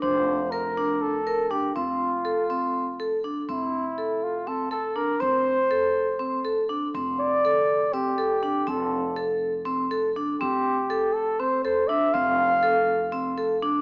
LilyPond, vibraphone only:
\new Staff \with { instrumentName = "Vibraphone" } { \time 7/8 \key f \major \tempo 4 = 121 d'4 bes'8 d'4 bes'8 d'8 | c'4 a'8 c'4 a'8 d'8 | c'4 a'4 c'8 a'8 d'8 | c'4 a'4 c'8 a'8 d'8 |
c'4 a'4 c'8 a'8 d'8 | c'4 a'4 c'8 a'8 d'8 | c'4 a'4 c'8 a'8 d'8 | c'4 a'4 c'8 a'8 d'8 | }